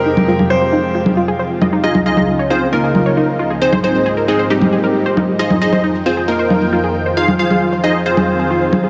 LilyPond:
<<
  \new Staff \with { instrumentName = "Digital synth lead" } { \time 4/4 \key f \minor \tempo 4 = 135 r1 | ees''8 ees''8. r16 c''8 bes'2 | c''8 c''8. r16 aes'8 g'2 | ees''8 ees''8. r16 c''8 bes'2 |
f''8 f''8. r16 ees''8 c''2 | }
  \new Staff \with { instrumentName = "Grand piano" } { \time 4/4 \key f \minor bes'4 c''4. r4. | r1 | r1 | r1 |
r1 | }
  \new Staff \with { instrumentName = "Synth pluck" } { \time 4/4 \key f \minor ees'16 r16 f'16 aes'16 r16 c''16 ees'16 r16 f'16 aes'16 f'16 aes'16 c''16 r16 ees''16 ees'16 | ees'16 r16 f'16 aes'16 r16 des''16 ees'16 r16 f'16 aes'16 r16 des''16 ees'16 r16 f'16 aes'16 | r16 c''16 ees'16 r16 aes'16 bes'16 r16 c''16 ees'16 r16 aes'16 bes'16 r16 c''16 ees'16 r16 | f'16 aes'16 r16 c''16 ees'16 r16 f'16 aes'16 r16 c''16 ees'16 r16 f'16 aes'16 r16 c''16 |
ees'16 r16 f'16 aes'16 r16 c''16 ees'16 r16 f'16 aes'16 r16 aes'16 f'16 r16 aes'16 aes'16 | }
  \new Staff \with { instrumentName = "Supersaw synth" } { \time 4/4 \key f \minor r1 | <ees' f' aes' ees''>8 <ees' f' aes' ees''>8. r16 <c' f' aes' c''>8 <bes ees' f' bes'>2 | <c' ees' aes' c''>8 <c' ees' aes' c''>8. r16 <aes c' ees' aes'>8 <g c' ees' g'>2 | <ees' aes' c'' ees''>8 <ees' aes' c'' ees''>8. r16 <c' f' aes' c''>8 <bes ees' f' bes'>2 |
<f' aes' c'' f''>8 <f' aes' c'' f''>8. r16 <ees' aes' c'' ees''>8 <c' f' aes' c''>2 | }
  \new Staff \with { instrumentName = "Analog synth pad" } { \clef bass \time 4/4 \key f \minor << { <f, c aes g'>1 | <des, des f>1 | <aes, bes>1 | <f, ees f g''>1~ |
<f, ees f g''>1 | } \\ { f'1 | ees'1 | c'1 | r1 |
f'1 | } >> }
  \new DrumStaff \with { instrumentName = "Drums" } \drummode { \time 4/4 r16 cgho8 cgho16 r4 r16 cgho8. r8 cgho8 | r16 cgho8 cgho16 r4 r8 cgho8 r4 | r16 cgho8. r4 r16 cgho8. r8 cgho8 | r16 cgho8 cgho16 r4 r8 cgho8 r4 |
r16 cgho8 cgho16 r4 r16 cgho8. r8 cgho8 | }
>>